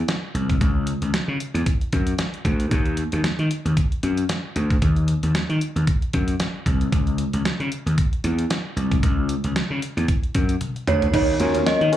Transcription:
0.08 snare loud
0.08 closed hi-hat medium
0.34 0.54 C2 medium
0.34 closed hi-hat medium
0.50 kick medium
0.50 closed hi-hat soft
0.61 0.92 C#2 medium
0.61 kick loud
0.61 closed hi-hat medium
0.87 closed hi-hat medium
1.02 1.11 C#2 medium
1.02 closed hi-hat soft
1.14 muted slap bass stroke soft
1.14 snare loud
1.14 closed hi-hat medium
1.28 1.37 C#3 medium
1.40 closed hi-hat medium
1.54 1.63 E2 medium
1.54 closed hi-hat soft
1.66 kick loud
1.66 closed hi-hat medium
1.81 closed hi-hat soft
1.93 2.12 F#2 medium
1.93 kick medium
1.93 closed hi-hat medium
2.07 closed hi-hat medium
2.18 snare loud
2.18 closed hi-hat medium
2.34 closed hi-hat soft
2.45 2.65 D2 medium
2.45 kick medium
2.45 closed hi-hat medium
2.60 closed hi-hat soft
2.71 3.02 D#2 medium
2.71 kick loud
2.71 closed hi-hat medium
2.86 closed hi-hat soft
2.97 closed hi-hat medium
3.12 3.21 D#2 medium
3.12 closed hi-hat soft
3.24 muted slap bass stroke soft
3.24 snare loud
3.24 closed hi-hat medium
3.39 3.48 D#3 medium
3.39 closed hi-hat soft
3.51 closed hi-hat medium
3.65 3.74 D#2 medium
3.65 closed hi-hat soft
3.77 kick loud
3.77 closed hi-hat medium
3.92 closed hi-hat soft
4.03 4.23 F#2 medium
4.03 closed hi-hat medium
4.17 closed hi-hat medium
4.29 snare loud
4.29 closed hi-hat medium
4.56 4.75 D2 medium
4.56 closed hi-hat medium
4.70 kick medium
4.70 closed hi-hat soft
4.82 5.13 D#2 loud
4.82 kick loud
4.82 closed hi-hat medium
4.96 closed hi-hat soft
5.08 closed hi-hat medium
5.23 5.32 D#2 medium
5.23 closed hi-hat medium
5.35 muted slap bass stroke soft
5.35 snare loud
5.35 closed hi-hat medium
5.49 5.58 D#3 medium
5.49 closed hi-hat soft
5.61 closed hi-hat medium
5.76 5.84 D#2 medium
5.76 closed hi-hat medium
5.87 kick loud
5.87 closed hi-hat loud
6.02 closed hi-hat soft
6.13 6.33 F#2 medium
6.13 kick medium
6.13 closed hi-hat medium
6.28 closed hi-hat medium
6.40 snare loud
6.40 closed hi-hat medium
6.66 6.86 C2 medium
6.66 kick medium
6.66 closed hi-hat medium
6.81 closed hi-hat soft
6.92 7.23 C#2 loud
6.92 kick loud
6.92 closed hi-hat medium
7.07 closed hi-hat soft
7.18 closed hi-hat medium
7.33 7.42 C#2 medium
7.33 closed hi-hat medium
7.45 muted slap bass stroke soft
7.45 snare loud
7.45 closed hi-hat medium
7.60 7.69 C#3 medium
7.60 closed hi-hat soft
7.72 closed hi-hat medium
7.86 7.95 D#2 medium
7.86 closed hi-hat soft
7.98 kick loud
7.98 closed hi-hat medium
8.13 closed hi-hat soft
8.24 8.44 E2 medium
8.24 closed hi-hat medium
8.39 closed hi-hat medium
8.50 snare loud
8.50 closed hi-hat medium
8.76 8.96 C2 medium
8.76 closed hi-hat medium
8.92 kick medium
8.92 closed hi-hat soft
9.03 9.34 C#2 medium
9.03 kick loud
9.03 closed hi-hat medium
9.29 closed hi-hat medium
9.44 9.53 C#2 medium
9.44 closed hi-hat soft
9.56 muted slap bass stroke soft
9.56 snare loud
9.56 closed hi-hat medium
9.70 9.79 C#3 medium
9.82 closed hi-hat medium
9.97 10.06 E2 loud
9.97 closed hi-hat soft
10.08 kick loud
10.08 closed hi-hat medium
10.23 closed hi-hat soft
10.35 10.54 F#2 medium
10.35 kick medium
10.35 closed hi-hat medium
10.49 closed hi-hat medium
10.61 closed hi-hat medium
10.61 high tom medium
10.76 closed hi-hat soft
10.87 11.07 D2 medium
10.87 11.14 C#5 medium
10.87 closed hi-hat medium
10.87 mid tom medium
11.02 closed hi-hat soft
11.02 floor tom medium
11.14 11.33 D#2 loud
11.14 11.23 D#4 loud
11.14 11.68 C#5 loud
11.14 kick loud
11.14 closed hi-hat medium
11.14 crash loud
11.28 closed hi-hat soft
11.40 11.60 D#2 loud
11.40 11.79 C#4 medium
11.40 11.79 F4 medium
11.40 11.79 F#4 medium
11.40 11.80 A#4 medium
11.40 muted clean electric guitar stroke soft
11.40 closed hi-hat medium
11.55 11.62 C#4 medium
11.55 closed hi-hat medium
11.66 11.75 A#3 medium
11.66 11.97 D#5 medium
11.66 muted slap bass stroke soft
11.66 snare loud
11.66 closed hi-hat medium
11.81 11.90 D#3 loud
11.81 muted clean electric guitar stroke soft
11.81 closed hi-hat soft
11.92 11.97 C#4 medium
11.92 11.97 F4 medium
11.92 11.97 F#4 medium
11.92 11.97 A#4 medium
11.92 closed hi-hat medium

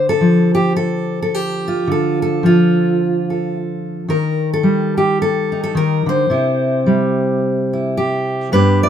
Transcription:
0.00 1.85 D3 medium
0.09 0.53 A4 medium
0.21 2.42 F3 medium
0.55 0.76 G4 medium
0.76 1.20 A4 medium
1.22 1.34 A4 medium
1.34 1.89 G4 medium
1.68 2.44 F4 medium
1.87 4.06 D3 medium
1.92 2.21 A4 medium
2.22 3.00 A4 medium
2.43 4.09 F3 medium
2.43 3.55 F4 medium
3.30 4.06 A4 soft
4.08 5.73 D#3 medium
4.08 4.53 A#4 medium
4.53 4.97 A4 medium
4.63 6.86 G3 medium
4.97 5.21 G4 medium
5.22 5.62 A4 medium
5.52 6.28 D#4 soft
5.64 5.76 A4 medium
5.75 6.06 D#3 medium
5.75 6.08 A#4 medium
6.06 6.29 D3 medium
6.06 7.97 C5 medium
6.30 8.52 C3 medium
6.30 7.72 E4 soft
6.86 8.50 G3 medium
7.73 8.50 E4 soft
7.97 8.52 G4 medium
8.52 8.89 G2 medium
8.52 8.89 B3 soft
8.52 8.89 D4 soft
8.52 8.89 G4 soft
8.52 8.83 B4 medium
8.83 8.89 D5 medium

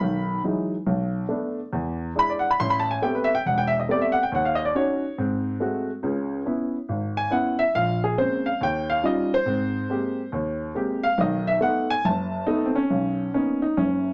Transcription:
0.00 0.38 B1 medium
0.00 0.38 D#3 medium
0.00 0.41 B5 loud
0.44 0.73 E3 medium
0.44 0.73 F#3 soft
0.44 0.74 G#3 medium
0.44 0.74 D#4 medium
0.87 1.24 B1 medium
1.29 1.59 A3 soft
1.29 1.59 B3 soft
1.29 1.59 D4 medium
1.73 2.10 E2 medium
2.15 2.45 G#3 medium
2.15 2.45 D4 soft
2.15 2.45 E4 medium
2.15 2.31 B5 loud
2.30 2.43 D5 medium
2.39 2.49 F#5 medium
2.51 2.58 B5 loud
2.60 2.97 A1 medium
2.60 2.73 C6 loud
2.70 2.85 B5 medium
2.80 2.90 A5 loud
2.91 3.00 G#5 medium
3.02 3.31 A3 medium
3.02 3.31 B3 soft
3.02 3.32 C4 soft
3.02 3.32 G4 medium
3.02 3.16 G5 medium
3.15 3.29 B4 medium
3.24 3.34 E5 loud
3.35 3.43 G5 loud
3.46 3.83 E1 medium
3.46 3.59 F#5 medium
3.58 3.72 G5 loud
3.67 3.77 E5 loud
3.80 3.87 D#5 medium
3.89 4.18 A3 medium
3.89 4.18 B3 medium
3.89 4.18 C4 soft
3.89 4.18 G4 medium
3.89 4.03 D5 medium
4.01 4.15 E5 medium
4.12 4.21 F#5 loud
4.23 4.30 G5 medium
4.32 4.68 D#2 medium
4.32 4.46 F#5 medium
4.45 4.58 F5 medium
4.55 4.64 D#5 loud
4.65 4.73 D5 medium
4.75 5.03 C#4 medium
4.75 5.04 D#4 medium
4.75 5.04 F#4 medium
4.75 5.15 C#5 medium
5.18 5.55 G#2 medium
5.18 5.55 C4 medium
5.60 5.89 G#3 medium
5.60 5.89 A3 soft
5.60 5.90 C4 soft
5.60 5.90 F#4 medium
6.03 6.40 C#2 medium
6.03 6.40 C#3 medium
6.46 6.75 B3 medium
6.46 6.75 C#4 soft
6.46 6.75 E4 medium
6.89 7.26 G#1 medium
7.17 7.32 G#5 loud
7.30 7.60 B3 medium
7.30 7.61 C#4 soft
7.30 7.61 E4 medium
7.30 7.59 F#5 medium
7.59 7.74 E5 loud
7.75 8.12 A#1 medium
7.75 8.02 F5 loud
8.04 8.18 G#4 medium
8.18 8.47 G#3 medium
8.18 8.47 A#3 soft
8.18 8.47 C4 medium
8.18 8.48 C#4 medium
8.18 8.45 C5 medium
8.46 8.60 F5 loud
8.61 8.98 D#2 medium
8.61 8.89 G5 loud
8.90 9.04 F5 loud
9.03 9.33 G3 medium
9.03 9.33 C#4 medium
9.03 9.33 D#4 soft
9.03 9.33 F4 medium
9.03 9.32 D#5 medium
9.34 10.30 C5 loud
9.46 9.83 G#2 medium
9.46 9.83 C4 medium
9.89 10.19 G#3 medium
9.89 10.19 A#3 soft
9.89 10.19 C4 medium
9.89 10.20 G4 medium
10.32 10.70 D#2 medium
10.75 11.05 G#3 medium
10.75 11.05 A#3 medium
10.75 11.05 C4 medium
10.75 11.05 G4 medium
11.03 11.18 F5 loud
11.18 11.56 B1 medium
11.18 11.56 D#3 medium
11.18 11.47 D#5 medium
11.47 11.62 E5 loud
11.61 11.91 A3 medium
11.61 11.91 B3 medium
11.61 11.91 D#4 medium
11.61 11.89 F#5 medium
11.90 12.05 G#5 loud
12.05 12.42 F#1 medium
12.05 12.80 A5 loud
12.47 12.77 A3 medium
12.47 12.78 B3 medium
12.47 12.67 D#4 medium
12.65 12.75 C4 medium
12.75 13.33 C#4 medium
12.90 13.28 B1 medium
13.34 13.63 A#3 soft
13.34 13.64 B3 soft
13.34 13.63 C#4 medium
13.34 13.61 D#4 medium
13.62 13.78 D#4 medium
13.77 14.13 F#1 medium
13.77 14.13 C#4 medium

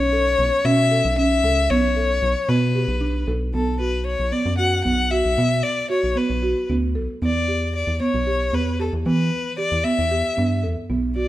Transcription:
0.00 0.35 B1 medium
0.00 0.67 C#5 medium
0.13 0.52 A4 medium
0.39 0.51 B1 medium
0.65 1.02 B2 medium
0.65 0.85 C#4 medium
0.65 1.17 E5 medium
0.91 1.11 A4 medium
1.05 1.41 B1 medium
1.18 1.38 C#4 medium
1.18 1.72 E5 medium
1.44 1.68 C#2 loud
1.44 1.64 A4 medium
1.70 2.19 B1 medium
1.70 1.90 B3 medium
1.70 2.50 C#5 medium
1.96 2.36 A4 medium
2.22 2.35 B1 medium
2.49 2.86 B2 medium
2.49 2.69 B3 medium
2.49 3.28 B4 medium
2.75 2.95 G4 medium
2.88 3.25 B1 medium
3.01 3.21 D4 medium
3.27 3.52 B1 medium
3.27 3.47 A4 medium
3.54 4.16 B1 medium
3.54 3.74 B3 medium
3.54 3.79 A4 medium
3.80 4.20 F#4 medium
3.80 4.05 B4 medium
4.06 4.33 C#5 medium
4.19 4.32 B1 medium
4.32 4.52 B3 medium
4.32 4.57 D5 medium
4.45 4.83 F#2 medium
4.58 4.79 F#4 medium
4.58 4.83 F#5 medium
4.84 5.22 B1 medium
4.84 5.05 B3 medium
4.84 5.12 F#5 medium
5.11 5.31 F#4 medium
5.11 5.65 E5 medium
5.25 5.37 B1 medium
5.38 5.63 B2 medium
5.38 5.78 B3 medium
5.63 5.90 D5 medium
5.90 6.10 F#4 medium
5.90 6.18 C#5 medium
6.04 6.16 B1 medium
6.16 6.36 B3 medium
6.16 6.69 B4 medium
6.30 6.54 B1 medium
6.43 6.63 F#4 medium
6.69 6.97 D2 medium
6.69 6.89 B3 medium
6.95 7.08 B1 medium
6.95 7.15 A4 medium
7.22 7.84 E2 medium
7.22 7.42 B3 medium
7.22 7.72 D5 medium
7.48 7.88 G4 medium
7.75 7.99 D5 medium
7.87 8.00 E2 medium
8.01 8.20 B3 medium
8.01 8.56 C#5 medium
8.14 8.51 B1 medium
8.27 8.47 G4 medium
8.53 8.90 E2 medium
8.53 8.73 B3 medium
8.53 8.80 B4 medium
8.79 8.99 G4 medium
8.79 8.92 A4 medium
8.93 9.05 E2 medium
9.06 9.30 E3 medium
9.06 9.45 B3 medium
9.06 9.55 B4 medium
9.58 9.78 G4 medium
9.58 9.86 D5 medium
9.72 9.84 E2 medium
9.84 10.04 B3 medium
9.84 10.63 E5 medium
9.99 10.23 E2 medium
10.11 10.31 G4 medium
10.37 10.66 G2 medium
10.37 10.57 B3 medium
10.63 10.76 E2 medium
10.63 10.83 A4 medium
10.90 11.28 B1 medium
10.90 11.09 B3 medium
11.16 11.28 F#4 medium
11.16 11.28 D5 medium

